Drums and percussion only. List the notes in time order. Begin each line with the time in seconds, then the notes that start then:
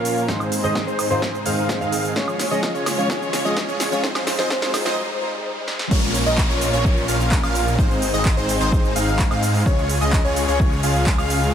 0.05 open hi-hat, shaker
0.17 shaker
0.28 kick, snare, shaker
0.40 high woodblock, shaker
0.52 open hi-hat, shaker
0.64 shaker
0.75 kick, snare, shaker
0.88 shaker
0.99 open hi-hat, high woodblock, shaker
1.11 shaker
1.22 kick, snare, shaker
1.35 shaker
1.46 open hi-hat, shaker
1.58 shaker
1.69 kick, snare, shaker
1.82 shaker
1.92 open hi-hat, shaker
2.05 shaker
2.16 kick, snare, shaker
2.28 high woodblock, shaker
2.39 snare, open hi-hat, shaker
2.52 shaker
2.63 kick, snare, shaker
2.75 shaker
2.86 snare, open hi-hat, high woodblock, shaker
2.99 shaker
3.10 kick, snare, shaker
3.22 shaker
3.33 snare, open hi-hat, shaker
3.46 shaker
3.57 kick, snare, shaker
3.69 shaker
3.80 snare, open hi-hat, shaker
3.92 shaker
4.04 kick, snare, shaker
4.15 snare, high woodblock, shaker
4.27 snare, open hi-hat, shaker
4.39 snare, shaker
4.50 kick, snare, shaker
4.62 snare, shaker
4.74 snare, open hi-hat, high woodblock, shaker
4.86 snare, shaker
5.68 snare
5.79 snare
5.91 kick, crash, shaker
6.04 shaker
6.15 open hi-hat, shaker
6.27 shaker
6.38 kick, clap, shaker
6.50 shaker
6.61 open hi-hat, shaker
6.74 shaker
6.85 kick, shaker
6.97 shaker
7.08 open hi-hat, shaker
7.21 shaker
7.32 kick, clap, shaker
7.43 high woodblock, shaker
7.55 open hi-hat, shaker
7.68 shaker
7.79 kick, shaker
7.91 shaker
8.02 open hi-hat, shaker
8.14 shaker
8.25 kick, clap, shaker
8.38 shaker
8.49 open hi-hat, shaker
8.61 shaker
8.72 kick, shaker
8.85 shaker
8.96 open hi-hat, shaker
9.08 shaker
9.19 kick, clap, shaker
9.31 high woodblock, shaker
9.43 open hi-hat, shaker
9.54 open hi-hat, shaker
9.66 kick, shaker
9.79 shaker
9.89 open hi-hat, shaker
10.02 shaker
10.13 kick, clap, shaker
10.25 shaker
10.36 open hi-hat, shaker
10.49 shaker
10.60 kick, shaker
10.72 shaker
10.83 open hi-hat, shaker
10.96 shaker
11.07 kick, clap, shaker
11.18 high woodblock, shaker
11.30 open hi-hat, shaker
11.43 shaker